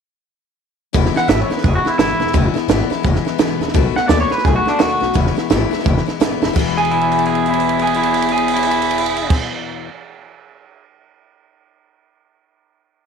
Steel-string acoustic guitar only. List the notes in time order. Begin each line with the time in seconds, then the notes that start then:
0.93 E2 B2 E3 G#3 B3 E4
1.14 E3 G#3 B3 E4
1.28 E2 B2 E3 G#3 B3 E4
1.50 E3 G#3 B3 E4
1.62 E3 G#3 B3 E4
1.85 E3 G#3 B3 E4
1.99 E2 B2 E3 G#3 B3 E4
2.20 E3 G#3 B3 E4
2.33 E2 B2 E3 G#3 B3 E4
2.54 E3 G#3 B3 E4
2.68 E2 B2 E3 G#3 B3 E4
2.90 E3 G#3 B3 E4
3.03 E3 G#3 B3 E4
3.25 E3 G#3 B3 E4
3.38 E2 B2 E3 G#3 B3 E4
3.61 E3 G#3 B3 E4
3.74 B2 D#3 A3 B3 F#4
3.95 A3 B3 F#4
4.09 B2 D#3 A3 B3 F#4
4.30 A3 B3 F#4
4.44 D#3 A3 B3 F#4
4.65 A3 B3 F#4
4.79 B2 D#3 A3 B3 F#4
5.00 A3 B3 F#4
5.13 E2 B2 E3 G#3 B3 E4
5.35 E3 G#3 B3 E4
5.50 E2 B2 E3 G#3 B3 E4
5.71 G#3 B3 E4
5.75 E3
5.84 E3 G#3 B3 E4
6.06 E3 G#3 B3 E4
6.20 E2 B2 E3 G#3 B3 E4
6.42 E3 G#3 B3 E4
6.53 E2 B2 E3
6.57 G#3 B3 E4